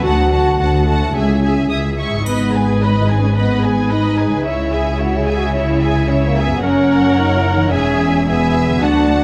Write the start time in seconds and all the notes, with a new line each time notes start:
Already playing: D3 F#3 F#4
0.01 F#4 A4 A5
0.05 D2 F#5
0.32 F#4 F#5 A5
0.59 D2 F#4 F#5 A5
0.87 A3 F#4 F#5 A5
0.99 C#3
1.03 G#3
1.07 E4
1.12 C#4 G#4
1.16 C#2 E5 G#5
1.42 G#4 E5 G#5
1.69 C#2 G#4 E5 D#6
1.98 G#4 E5 C#6
2.09 G#2
2.13 G#3
2.18 D#4
2.22 G#4 B4
2.26 G#1 G#2 B3 D#5 B5, triangle
2.54 G#4 B4 G#5
2.83 C#4 B4 D#5 B5
3.01 D#4
3.08 G#4 B4 G#5
3.19 C#4
3.35 B3 B4 D#5 B5
3.63 G#4 B4 G#5
3.90 D#4 B4 D#5 B5
4.16 G#4 B4 G#5
4.28 C#3
4.33 G#3
4.38 C#4
4.42 C#3 E4 G#4 E5
4.46 C#2 C#5
4.72 G#4 E5 G#5
4.98 E4 F#4 C#5 E5
5.16 G#4
5.25 G#4 G#5
5.29 E5
5.37 F#4
5.54 E4 C#5 E5
5.81 G#4 E5 G#5
6.09 C#4 E4 C#5 E5
6.27 A#3
6.37 G#4 E5 G#5
6.46 F#2 B3
6.52 A#3
6.56 C#4
6.60 C#4 F#4 A#4 C#5 F#5
6.65 F#1 F#2
7.19 D#4
7.36 E4
7.54 E3 D#4
7.60 G#3
7.65 E4 G#4
7.70 C#4 G#4 E5
7.74 E1 E2 G#5
8.28 B3 G#4 E5 G#5
8.66 D3
8.70 F#3
8.75 F#4
8.79 D2 D4 F#4 A4
8.83 D2 F#5 A5